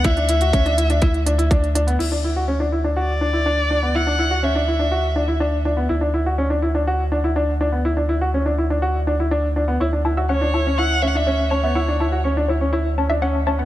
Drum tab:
CC |----------------|x---------------|----------------|----------------|
HH |xxxxxxxxxxxxxxxx|----------------|----------------|----------------|
BD |o---o---o---o---|----------------|----------------|----------------|

CC |----------------|----------------|----------------|
HH |----------------|----------------|----------------|
BD |----------------|----------------|----------------|